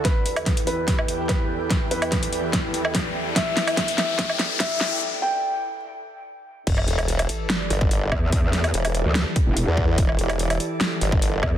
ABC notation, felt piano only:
X:1
M:4/4
L:1/8
Q:1/4=145
K:Em
V:1 name="Felt piano"
B3 B3 B2- | B B3 z4 | e3 e3 e2- | e g3 z4 |
z8 | z8 | z8 |]